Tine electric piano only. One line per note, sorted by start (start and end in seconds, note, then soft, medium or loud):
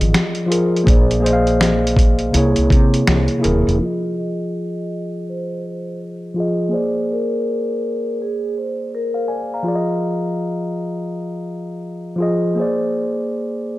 0.00 0.46 F3 medium
0.00 0.48 F4 medium
0.00 0.50 G#4 medium
0.00 0.89 D5 medium
0.00 0.88 D#5 loud
0.46 0.78 F3 medium
0.46 0.78 F4 medium
0.46 0.79 G#4 medium
0.52 0.80 A#4 medium
0.84 1.15 A#3 medium
0.84 1.15 G#4 medium
0.84 1.16 C5 medium
0.90 1.18 D5 medium
1.20 2.31 A#3 medium
1.20 2.32 G#4 medium
1.20 2.33 C5 medium
1.26 1.33 D#5 medium
1.33 2.37 F5 loud
2.31 3.23 C3 medium
2.31 3.24 A#3 medium
2.31 3.25 E4 medium
2.36 3.26 G#4 medium
2.36 3.27 C#5 medium
3.38 3.70 C3 medium
3.38 3.70 A#3 medium
3.38 3.71 E4 medium
3.43 3.72 G#4 medium
3.43 3.73 A#4 loud
3.79 4.88 F3 medium
3.79 4.89 F4 medium
3.84 4.90 G#4 medium
6.34 6.64 F3 medium
6.34 6.65 F4 medium
6.34 6.66 G#4 medium
6.40 6.67 D#5 medium
6.69 7.79 A#3 medium
6.69 7.80 G#4 medium
6.69 7.81 C5 medium
6.74 7.82 D5 medium
9.14 9.28 C5 soft
9.14 9.28 F5 medium
9.28 9.50 D5 soft
9.28 9.49 G#5 medium
9.54 9.87 F5 soft
9.54 9.87 A#5 medium
9.63 10.73 F3 medium
9.63 10.73 F4 medium
9.63 10.74 G#4 medium
9.68 9.75 D5 medium
9.75 10.79 D#5 medium
12.16 12.48 F3 medium
12.16 12.49 F4 medium
12.20 12.50 G#4 medium
12.20 12.51 D#5 medium
12.55 13.65 A#3 medium
12.55 13.66 G#4 medium
12.60 13.67 C5 medium
12.60 13.68 D5 medium